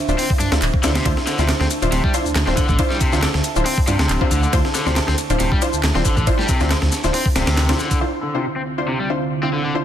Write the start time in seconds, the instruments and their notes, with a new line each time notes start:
Already playing: analog synth pad D4 C5 E5 F5
0.08 detuned saw bass D1, synth stab D4 E4 F4 C5, shaker
0.18 overdriven electric guitar C4, open hi-hat, shaker
0.30 kick
0.40 detuned saw bass G2, overdriven electric guitar D4, ride, shaker
0.52 detuned saw bass D2, synth stab D4 E4 F4 C5, snare, shaker
0.62 detuned saw bass D1, clap, ride, shaker
0.74 kick
0.83 detuned saw bass D2, overdriven electric guitar D3, synth stab D4 E4 F4 C5, snare, ride, shaker
0.95 overdriven electric guitar C3, snare, ride, shaker
1.05 detuned saw bass D2, synth stab D4 E4 F4 C5, analog synth pad A5, kick, ride, shaker
1.17 snare
1.27 overdriven electric guitar D3, snare, ride, shaker
1.38 detuned saw bass D2, overdriven electric guitar C3, synth stab D4 E4 F4 C5, snare, shaker
1.49 snare, clap, ride, shaker
1.60 detuned saw bass D2, overdriven electric guitar C4, snare
1.70 ride, shaker
1.82 detuned saw bass D1, synth stab D4 E4 F4 C5, ride, shaker
1.92 detuned saw bass D1, overdriven electric guitar C3, ride, shaker
2.04 overdriven electric guitar G3, kick
2.14 synth stab D4 E4 F4 C5, ride, shaker
2.26 detuned saw bass D2, shaker
2.35 detuned saw bass D2, snare, clap, ride
2.47 detuned saw bass D1, overdriven electric guitar C4, synth stab D4 E4 F4 C5, snare
2.57 overdriven electric guitar D3, kick, ride, shaker
2.68 detuned saw bass A1, overdriven electric guitar D3, kick, shaker
2.79 synth stab D4 E4 F4 C5, kick, ride, shaker
2.90 overdriven electric guitar G3, snare
3.01 overdriven electric guitar C3, kick, ride, shaker
3.13 detuned saw bass D2, synth stab D4 E4 F4 C5, snare, shaker
3.22 overdriven electric guitar D3, snare, clap, ride, shaker
3.34 detuned saw bass D2, snare
3.44 ride, shaker
3.56 detuned saw bass D1, synth stab D4 E4 F4 C5, shaker
3.66 overdriven electric guitar C4, open hi-hat, shaker
3.78 kick
3.87 detuned saw bass G2, overdriven electric guitar C3, synth stab D4 E4 F4 C5, ride, shaker
3.99 detuned saw bass D2, snare, shaker
4.09 detuned saw bass D1, clap, ride, shaker
4.21 synth stab D4 E4 F4 C5, kick
4.31 detuned saw bass D2, overdriven electric guitar D3, ride, shaker
4.43 overdriven electric guitar D3, shaker
4.53 detuned saw bass D2, synth stab D4 E4 F4 C5, kick, ride, shaker
4.65 snare
4.75 overdriven electric guitar D3, snare, ride, shaker
4.86 detuned saw bass D2, overdriven electric guitar C3, synth stab D4 E4 F4 C5, snare, shaker
4.96 snare, clap, ride, shaker
5.08 detuned saw bass D2, overdriven electric guitar C4, snare
5.18 ride, shaker
5.30 detuned saw bass D1, synth stab D4 E4 F4 C5, ride, shaker
5.40 detuned saw bass D1, overdriven electric guitar C3, ride, shaker
5.52 overdriven electric guitar G3, kick
5.62 synth stab D4 E4 F4 C5, ride, shaker
5.73 detuned saw bass D2, shaker
5.83 detuned saw bass D2, snare, clap, ride, shaker
5.95 detuned saw bass D1, overdriven electric guitar C4, synth stab D4 E4 F4 C5, snare
6.05 overdriven electric guitar D3, kick, ride, shaker
6.17 detuned saw bass A1, overdriven electric guitar D3, kick, shaker
6.27 synth stab D4 E4 F4 C5, kick, ride, shaker
6.39 overdriven electric guitar G3, snare
6.48 overdriven electric guitar C3, kick, ride, shaker
6.60 detuned saw bass D2, synth stab D4 E4 F4 C5, snare, shaker
6.70 overdriven electric guitar D3, snare, clap, ride, shaker
6.82 detuned saw bass D2, snare
6.92 snare, ride, shaker
7.04 detuned saw bass D1, synth stab D4 E4 F4 C5, snare, shaker
7.14 overdriven electric guitar C4, open hi-hat, shaker
7.26 kick
7.36 detuned saw bass D1, overdriven electric guitar C3, synth stab D4 E4 F4 C5, snare, ride, shaker
7.47 detuned saw bass D2, snare, ride, shaker
7.57 snare, clap, ride, shaker
7.69 synth stab D4 E4 F4 C5, snare, ride
7.79 overdriven electric guitar D3, snare, shaker
7.91 overdriven electric guitar D3, kick, ride, shaker
8.01 analog synth pad D3 C4 E5 F5, synth stab D4 E4 F4 C5
8.23 overdriven electric guitar D3
8.34 overdriven electric guitar C3, synth stab D4 E4 F4 C5
8.56 overdriven electric guitar C4
8.78 synth stab D4 E4 F4 C5
8.88 overdriven electric guitar C3
8.99 overdriven electric guitar G3
9.10 synth stab D4 E4 F4 C5
9.43 overdriven electric guitar C4, synth stab D4 E4 F4 C5
9.53 overdriven electric guitar D3
9.65 overdriven electric guitar D3
9.75 synth stab D4 E4 F4 C5